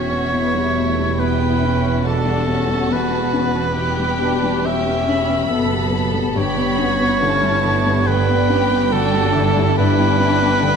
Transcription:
0.00 5.47 E1 soft
0.00 1.15 E2 soft
0.00 5.47 E2 soft
0.00 0.11 B3 soft
0.00 0.12 C#4 soft
0.00 0.31 C#4 soft
0.00 0.33 F#4 soft
0.00 1.21 C#5 medium
0.00 1.15 E5 soft
0.11 0.46 B3 soft
0.33 0.68 B2 soft
0.33 0.77 B3 soft
0.33 2.05 E4 soft
0.54 0.89 G3 soft
0.76 1.10 B2 soft
0.76 1.20 A3 soft
0.97 1.32 G3 soft
1.19 1.54 B2 soft
1.19 1.62 B3 soft
1.19 2.05 B4 soft
1.19 2.05 G5 soft
1.41 1.75 B3 soft
1.62 1.83 C#4 soft
1.62 2.05 C#4 soft
1.83 2.17 B3 soft
2.04 2.39 B2 soft
2.04 2.48 D4 soft
2.04 3.76 F#4 soft
2.04 2.94 A4 medium
2.04 3.73 A5 soft
2.25 2.60 G3 soft
2.47 2.82 B2 soft
2.47 2.90 C#4 soft
2.68 3.03 G3 soft
2.89 4.61 E2 soft
2.89 3.77 B3 soft
2.89 4.67 B4 medium
3.11 3.46 B3 soft
3.33 3.55 C#4 soft
3.55 3.90 B3 soft
3.76 4.12 B2 soft
3.76 4.21 B3 soft
3.76 5.47 G4 soft
3.76 4.65 G5 soft
3.99 4.35 G3 soft
4.21 4.56 B2 soft
4.21 4.65 D4 soft
4.43 4.78 G3 soft
4.65 5.00 B2 soft
4.65 5.51 C#4 soft
4.65 5.94 E5 medium
4.65 5.08 G5 soft
4.87 5.21 B3 soft
5.08 5.29 C#4 soft
5.08 6.36 B5 soft
5.29 5.63 B3 soft
5.50 6.37 F#1 soft
5.50 6.36 F#2 soft
5.50 5.85 B2 soft
5.50 6.35 B3 soft
5.50 6.35 A4 soft
5.73 6.07 G4 soft
5.93 6.28 B2 soft
6.14 6.36 G3 soft
6.36 10.76 G1 soft
6.36 8.03 G2 soft
6.36 10.76 G2 soft
6.36 7.21 B3 soft
6.36 6.79 G4 soft
6.36 8.09 C#5 medium
6.36 7.20 B5 soft
6.57 6.92 B3 soft
6.78 7.00 C#4 soft
6.78 7.22 F#4 soft
7.00 7.34 B3 soft
7.22 7.56 D3 soft
7.22 7.65 C#4 medium
7.22 8.07 E4 soft
7.22 8.06 A5 soft
7.43 7.77 G3 soft
7.65 7.99 D3 soft
7.65 8.89 B3 soft
7.87 8.20 G3 soft
8.07 8.41 D3 soft
8.07 8.49 D4 soft
8.07 8.93 B4 medium
8.07 9.76 G5 soft
8.29 8.63 B3 soft
8.50 8.71 C#4 soft
8.50 8.92 G4 soft
8.71 9.05 B3 soft
8.92 9.27 D3 soft
8.92 9.77 D4 soft
8.92 9.34 F#4 soft
8.92 9.77 A4 medium
9.14 9.48 G3 soft
9.35 9.69 D3 soft
9.35 10.63 E4 soft
9.57 9.90 G3 soft
9.77 10.76 G2 medium
9.77 10.61 D4 soft
9.77 10.76 B4 medium
9.77 10.76 G5 medium
9.98 10.32 B3 soft
10.20 10.41 C#4 soft
10.41 10.75 B3 soft
10.62 10.76 D3 soft
10.62 10.76 B3 medium
10.62 10.76 D4 medium

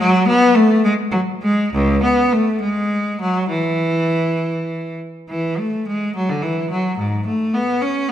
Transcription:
0.00 0.27 F#3 medium
0.27 0.55 B3 loud
0.55 0.84 A3 medium
0.85 0.93 G#3 medium
1.12 1.20 F#3 medium
1.43 1.73 G#3 medium
1.73 2.03 C#2 medium
2.03 2.32 B3 medium
2.33 2.61 A3 medium
2.61 3.19 G#3 medium
3.21 3.50 F#3 medium
3.49 4.96 E3 medium
5.29 5.57 E3 medium
5.59 5.88 A3 medium
5.87 6.16 G#3 medium
6.16 6.30 F#3 medium
6.29 6.44 D3 medium
6.42 6.71 E3 medium
6.70 6.98 F#3 medium
6.98 7.26 G#2 medium
7.26 7.53 A3 medium
7.54 7.81 B3 medium
7.81 8.09 C#4 medium

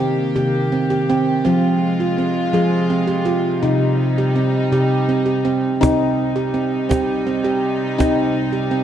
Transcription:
0.00 0.17 C3 medium
0.00 1.43 D#3 medium
0.00 1.44 A#3 medium
0.00 0.37 C4 medium
0.00 1.42 G4 medium
0.36 0.96 C3 medium
0.36 0.73 G4 medium
0.72 0.91 C4 medium
0.90 1.27 G4 medium
1.10 1.39 C4 medium
1.45 5.78 C3 medium
1.45 2.35 F3 medium
1.45 3.61 G#3 medium
1.45 1.82 C4 medium
1.45 3.62 F4 medium
2.00 2.18 F4 medium
2.18 2.55 C4 medium
2.53 3.13 F3 medium
2.53 2.91 G#4 medium
2.90 3.09 C4 medium
3.07 3.45 G4 medium
3.25 3.56 F4 medium
3.61 4.53 C3 medium
3.61 5.79 G3 medium
3.61 5.79 D#4 medium
3.61 4.00 D#4 medium
4.18 4.37 G4 medium
4.36 4.73 C4 medium
4.72 5.32 C3 medium
4.72 5.09 G4 medium
5.09 5.27 C4 medium
5.26 5.63 G4 medium
5.45 5.75 C4 medium
5.81 8.84 C3 medium
5.81 8.84 G3 medium
5.81 6.53 C4 medium
5.81 6.18 D#4 medium
5.81 8.84 D#4 medium
5.81 cajon bass medium
5.81 cajon slap medium
6.36 6.54 G4 medium
6.54 6.88 C4 medium
6.74 cajon slap soft
6.89 7.25 C4 medium
6.89 7.27 G4 medium
6.89 cajon bass soft
6.89 cajon slap medium
7.27 7.45 C4 medium
7.44 7.82 G4 medium
7.98 8.70 C4 medium
7.98 8.36 D#4 medium
7.98 cajon bass medium
7.98 cajon slap medium
8.53 8.72 G4 medium
8.71 8.84 C4 medium

